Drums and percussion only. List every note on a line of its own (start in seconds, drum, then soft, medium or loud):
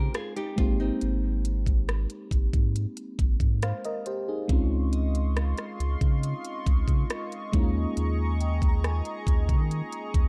0.14 cross-stick loud
0.14 closed hi-hat medium
0.37 closed hi-hat soft
0.58 kick loud
0.58 closed hi-hat medium
1.01 closed hi-hat medium
1.45 closed hi-hat medium
1.66 kick medium
1.66 closed hi-hat soft
1.89 cross-stick loud
1.89 closed hi-hat soft
2.10 closed hi-hat medium
2.31 kick medium
2.31 closed hi-hat medium
2.53 kick loud
2.53 closed hi-hat medium
2.76 closed hi-hat medium
2.97 closed hi-hat medium
3.19 kick medium
3.19 closed hi-hat medium
3.40 kick medium
3.40 closed hi-hat soft
3.62 cross-stick loud
3.62 closed hi-hat medium
3.85 closed hi-hat soft
4.06 closed hi-hat medium
4.49 kick loud
4.49 closed hi-hat medium
4.93 closed hi-hat medium
5.15 closed hi-hat medium
5.37 cross-stick loud
5.37 closed hi-hat soft
5.58 cross-stick medium
5.58 closed hi-hat medium
5.80 closed hi-hat medium
6.01 kick loud
6.01 closed hi-hat medium
6.23 closed hi-hat medium
6.45 closed hi-hat medium
6.67 kick loud
6.67 closed hi-hat medium
6.88 kick medium
6.88 closed hi-hat soft
7.10 cross-stick loud
7.10 closed hi-hat medium
7.32 closed hi-hat soft
7.53 kick loud
7.53 closed hi-hat medium
7.97 closed hi-hat medium
8.41 closed hi-hat medium
8.62 kick medium
8.62 closed hi-hat medium
8.84 cross-stick loud
8.84 closed hi-hat soft
9.05 closed hi-hat medium
9.27 kick loud
9.27 closed hi-hat medium
9.49 kick loud
9.49 closed hi-hat medium
9.71 closed hi-hat medium
9.92 closed hi-hat medium
10.14 kick loud
10.14 closed hi-hat medium